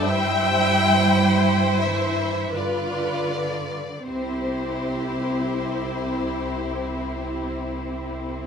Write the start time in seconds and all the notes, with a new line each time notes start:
0.02 G2 G3 E4 C5 E5 G5
1.19 C5
1.83 E3 E5
2.53 G2 D3 F4 B4 D5
4.07 C2 C4 E4 G4 C5